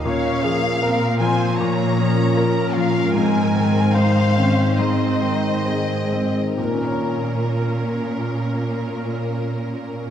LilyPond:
<<
  \new Staff \with { instrumentName = "Violin section" } { \time 4/4 \key bes \minor \tempo 4 = 71 f''4. aes''8 bes''4. f''8 | aes''4 f''4 ees''2 | bes'1 | }
  \new Staff \with { instrumentName = "Viola section" } { \time 4/4 \key bes \minor << { des''8 aes'8 bes'8 c''8 des''4 bes'4~ | bes'4 c''4 c''4 aes'8. r16 | bes'1 | } \\ { des'4 c'4 bes8 des'4. | c'8 c'8 ees'8 des'8 c'4 c'8. r16 | des'1 | } >> }
  \new Staff \with { instrumentName = "Harp" } { \time 4/4 \key bes \minor << { bes'1 | r1 | <bes, bes des' des'' bes''>1 | } \\ { bes,8 bes'8 f'8 f8 f'8 bes'8 f'8 f8 | aes,8 c''8 c'8 ees8 c'8 c''8 c'8 ees8 | r1 | } >> }
  \new Staff \with { instrumentName = "Grand piano" } { \time 4/4 \key bes \minor bes,8 f8 bes'8 f'8 bes,8 f8 bes'8 f'8 | aes,8 ees8 c''8 c'8 aes,8 ees8 c''8 c'8 | <bes, bes des' bes' des'' bes''>1 | }
  \new Staff \with { instrumentName = "Cello section" } { \clef bass \time 4/4 \key bes \minor bes,1 | aes,2.~ aes,8. r16 | bes,1 | }
>>